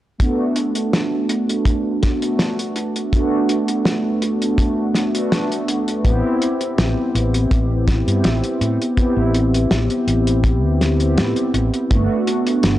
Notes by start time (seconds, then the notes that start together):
0.18 A3 B3 D4 F#4, kick, closed hi-hat
0.56 closed hi-hat
0.75 closed hi-hat
0.93 snare, closed hi-hat
1.29 closed hi-hat
1.49 closed hi-hat
1.65 kick, closed hi-hat
2.03 kick, snare, closed hi-hat
2.21 A3 B3 D4 F#4, closed hi-hat
2.39 snare, closed hi-hat
2.59 closed hi-hat
2.76 closed hi-hat
2.96 closed hi-hat
3.11 A3 B3 D4 F#4, kick, closed hi-hat
3.49 closed hi-hat
3.68 closed hi-hat
3.85 snare, closed hi-hat
4.22 closed hi-hat
4.42 closed hi-hat
4.58 kick, closed hi-hat
4.94 snare, closed hi-hat
5.14 A3 B3 D4 F#4, closed hi-hat
5.32 snare, closed hi-hat
5.52 closed hi-hat
5.68 closed hi-hat
5.88 closed hi-hat
6.03 A1 B3 C4 E4 G4, kick, closed hi-hat
6.42 closed hi-hat
6.61 closed hi-hat
6.78 A1, snare, closed hi-hat
7.15 A1, closed hi-hat
7.34 closed hi-hat
7.51 A1, kick, closed hi-hat
7.88 kick, snare, closed hi-hat
8.06 G2 B3 C4 E4 G4, closed hi-hat
8.24 A1, snare, closed hi-hat
8.44 closed hi-hat
8.61 A2, closed hi-hat
8.82 closed hi-hat
8.96 B3 C4 E4 G4, muted fretless electric bass stroke, kick, closed hi-hat
9.17 A1
9.34 closed hi-hat
9.54 closed hi-hat
9.71 A1, snare, closed hi-hat
9.90 closed hi-hat
10.07 A1, closed hi-hat
10.27 closed hi-hat
10.44 kick, closed hi-hat
10.63 D2
10.81 snare, closed hi-hat
10.99 B3 C4 E4 G4, closed hi-hat
11.17 A2, snare, closed hi-hat
11.36 closed hi-hat
11.54 A1, closed hi-hat
11.74 closed hi-hat
11.89 G1 A3 B3 D4 F#4, kick, closed hi-hat
12.27 closed hi-hat
12.47 closed hi-hat
12.63 G1, snare, closed hi-hat